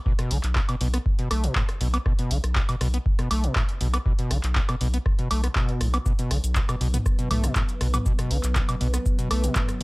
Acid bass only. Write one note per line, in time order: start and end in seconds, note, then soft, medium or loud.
0.06 0.13 B2 medium
0.19 0.32 B2 medium
0.31 0.38 D3 medium
0.56 0.60 B2 medium
0.69 0.75 B2 loud
0.81 0.88 B2 medium
0.94 0.98 B3 loud
1.19 1.29 B2 medium
1.31 1.45 A3 medium
1.44 1.54 B2 medium
1.56 1.63 A2 medium
1.81 1.88 B2 medium
1.94 1.98 B3 loud
2.06 2.13 B2 medium
2.19 2.32 B2 medium
2.31 2.38 D3 medium
2.56 2.60 B2 medium
2.69 2.75 B2 loud
2.81 2.88 B2 loud
2.94 2.98 B3 loud
3.19 3.29 B2 medium
3.31 3.45 A3 medium
3.44 3.54 B2 medium
3.56 3.63 A2 medium
3.81 3.88 B2 medium
3.94 3.98 B3 loud
4.06 4.13 B2 medium
4.19 4.32 B2 medium
4.31 4.38 D3 medium
4.56 4.60 B2 medium
4.69 4.75 B2 loud
4.81 4.88 B2 loud
4.94 4.98 B3 loud
5.19 5.29 B2 medium
5.31 5.42 A3 medium
5.44 5.48 B3 medium
5.56 5.82 B2 loud
5.81 5.88 A2 medium
5.94 5.98 B3 medium
6.06 6.13 B2 medium
6.19 6.32 B2 medium
6.31 6.38 D3 medium
6.56 6.60 B2 medium
6.69 6.75 B2 loud
6.81 6.88 B2 loud
6.94 6.98 B3 loud
7.19 7.29 B2 medium
7.31 7.45 A3 medium
7.44 7.54 B2 medium
7.56 7.63 A2 medium
7.81 7.88 B2 medium
7.94 7.98 B3 loud
8.06 8.13 B2 medium
8.19 8.32 B2 medium
8.31 8.38 D3 medium
8.56 8.60 B2 medium
8.69 8.75 B2 loud
8.81 8.88 B2 loud
8.94 8.98 B3 loud
9.19 9.29 B2 medium
9.31 9.45 A3 medium
9.44 9.54 B2 medium
9.56 9.63 A2 medium